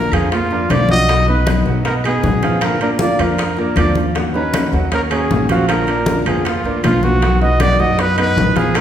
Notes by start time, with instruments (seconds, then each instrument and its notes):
Already playing: steel-string acoustic guitar D3 A#3 D4 F4, nylon-string guitar D4, trumpet A#4
0.12 upright bass F2, grand piano F3 F4 F5, nylon-string guitar B3, trumpet G#4, high bongo, high timbale, claves
0.32 nylon-string guitar A#3, trumpet F4, muted steel-string acoustic guitar stroke, high bongo, high conga, high timbale
0.51 grand piano A#3 A#4 D5, steel-string acoustic guitar A#3 D4 F4, high bongo, high conga
0.69 upright bass B1, steel-string acoustic guitar D3 A#3 D4 F4, grand piano F3 F4 F5, trumpet D5, high bongo, low bongo, high conga, high timbale, claves
0.89 steel-string acoustic guitar A#3 D4 F4, nylon-string guitar F#4, trumpet D#5, high conga
1.08 steel-string acoustic guitar B2 F#3 B3 D#4 F#4, grand piano F#3 F#4 F#5, high bongo, high conga, high timbale
1.27 grand piano B3 B4 D#5, steel-string acoustic guitar B3 D#4 F#4, trumpet B4, high bongo, high conga
1.46 steel-string acoustic guitar B2 F#3 B3 D#4 F#4, high bongo, high conga, high timbale, claves
1.66 upright bass B2, grand piano F#3 F#4 F#5, high bongo, high conga
1.85 grand piano B3 B4 D#5, nylon-string guitar D#4, trumpet A#4, muted steel-string acoustic guitar stroke, high bongo, high conga, high timbale
2.04 grand piano B3 B4 D#5, steel-string acoustic guitar B3 D#4 F#4, trumpet G#4, high bongo, high conga, high timbale, claves
2.23 upright bass A#2, steel-string acoustic guitar B2 F#3 B3 D#4 F#4, high bongo, low bongo, high conga
2.43 grand piano F3 F4 F5, steel-string acoustic guitar B3 D#4 F#4, high conga, high timbale
2.61 steel-string acoustic guitar D3 A#3 D4 F4, trumpet A#4, high bongo, high conga, high timbale, claves
2.80 grand piano A#3 A#4 D5, steel-string acoustic guitar A#3 D4 F4, trumpet A#4, high bongo, high conga, high timbale
2.99 steel-string acoustic guitar D3 A#3 D4 F4, trumpet D5, high bongo, high conga
3.19 upright bass F2, grand piano F3 F4 F5, nylon-string guitar D4, trumpet A#4, high bongo, high timbale, claves
3.38 muted steel-string acoustic guitar stroke, high bongo, high conga, high timbale
3.57 grand piano A#3 A#4 D5, steel-string acoustic guitar A#3 D4 F4, high bongo, high conga
3.76 upright bass D#2, steel-string acoustic guitar D3 A#3 D4 F4, grand piano F3 F4 F5, trumpet D5, high bongo, low bongo, high conga, high timbale, claves
3.95 steel-string acoustic guitar A#3 D4 F4, high conga
4.15 steel-string acoustic guitar D#3 A#3 C#4 F#4, grand piano F#3 F#4 F#5, high bongo, high conga, high timbale
4.34 steel-string acoustic guitar A#3 C#4 F#4, grand piano C#4 C#5 A#5, nylon-string guitar D#4, trumpet B4, high bongo, high conga
4.53 steel-string acoustic guitar D#3 A#3 C#4 F#4, high bongo, high conga, high timbale, claves
4.72 upright bass D#2, grand piano F#3 F#4 F#5, high bongo, high conga
4.92 grand piano A#3 A#4 C#5, nylon-string guitar C#4, trumpet A#4, muted steel-string acoustic guitar stroke, high bongo, high conga, high timbale
5.11 grand piano A#3 A#4 C#5, steel-string acoustic guitar A#3 C#4 F#4, trumpet G#4, high bongo, high conga, high timbale, claves
5.31 upright bass A#1, steel-string acoustic guitar D#3 A#3 C#4 F#4, high bongo, low bongo, high conga
5.49 grand piano F3 F4 F5, steel-string acoustic guitar A#3 C#4 F#4, trumpet F#4, high conga, high timbale
5.68 steel-string acoustic guitar D3 A#3 D4 F4, trumpet A#4, high bongo, high conga, high timbale, claves
5.87 grand piano A#3 A#4 D5, steel-string acoustic guitar A#3 D4 F4, high bongo, high conga, high timbale
6.06 steel-string acoustic guitar D3 A#3 D4 F4, high bongo, high conga
6.26 upright bass F2, grand piano F3 F4 F5, nylon-string guitar B3, trumpet G#4, high bongo, high timbale, claves
6.45 nylon-string guitar A#3, trumpet F4, muted steel-string acoustic guitar stroke, high bongo, high conga, high timbale
6.64 upright bass D2, grand piano A#3 A#4 D5, steel-string acoustic guitar A#3 D4 F4, high bongo, high conga
6.83 upright bass B1, steel-string acoustic guitar D3 A#3 D4 F4, grand piano F3 F4 F5, trumpet F4, high bongo, low bongo, high conga, high timbale, claves
7.02 steel-string acoustic guitar A#3 D4 F4, nylon-string guitar B3, trumpet F#4, high conga
7.22 steel-string acoustic guitar B2 F#3 B3 D#4 F#4, grand piano F#3 F#4 F#5, high bongo, high conga, high timbale
7.41 grand piano B3 B4 D#5, steel-string acoustic guitar B3 D#4 F#4, trumpet D#5, high bongo, high conga
7.60 steel-string acoustic guitar B2 F#3 B3 D#4 F#4, trumpet D5, high bongo, high conga, high timbale, claves
7.79 upright bass F#2, grand piano F#3 F#4 F#5, nylon-string guitar F#4, trumpet D#5, high bongo, high conga
7.98 grand piano B3 B4 D#5, nylon-string guitar D#4, trumpet B4, muted steel-string acoustic guitar stroke, high bongo, high conga, high timbale
8.17 grand piano B3 B4 D#5, steel-string acoustic guitar B3 D#4 F#4, trumpet B4, high bongo, high conga, high timbale, claves
8.36 upright bass A#1, steel-string acoustic guitar B2 F#3 B3 D#4 F#4, high bongo, low bongo, high conga, low timbale
8.56 grand piano F3 F4 F5, steel-string acoustic guitar B3 D#4 F#4, trumpet G#4, high conga, high timbale
8.74 steel-string acoustic guitar D3 A#3 D4 F4, trumpet A#4, high bongo, high conga, high timbale, claves